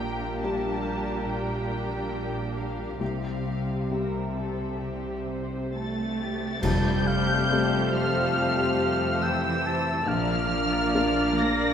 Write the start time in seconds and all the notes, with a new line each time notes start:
Already playing: A#1 A#2 G3 A#3 D4 G4 A#4 G5
0.00 G3
0.19 D4
0.40 G3 D4 G4 A5
0.44 G4
0.61 D4
0.83 G4
1.04 G3
1.25 A#2 G5
1.46 A#3
1.68 G3
1.89 D4
2.10 G4
2.32 D4
2.54 G4 F5
2.77 G3
2.98 C2 C3 G3 C4 G4 F5
3.22 G3
3.44 C4
3.67 G4
3.89 G3 C4 G4 A#4 E5
4.13 C5
4.35 G4 A4
4.58 C4
4.80 C3 G4
5.03 G3
5.27 C4 C5
5.49 G4
5.73 A3 C4 A4 A6
5.96 C5
6.18 G4
6.40 C4
6.62 F2 C3 G3 A3 C4 G4 A4 C5 A5 G6, concert bass drum, crash
6.85 A3
7.06 C4 F5
7.28 G4
7.50 A3 C4 G4 A4
7.71 C5
7.92 F3 A4 F6
8.14 C4
8.56 A3
8.78 C4
8.99 G4
9.20 E3 A4 G5 E6
9.42 C5
9.63 A4 A5
9.85 C4
10.05 A#1 A#2 F3 A#3 D4 A#4 D5 F5 F6
10.26 F3
10.48 A#3
10.70 D4
10.93 A#3 D4 A#4
11.15 D4
11.36 A#3 A#4 A#6
11.58 A#3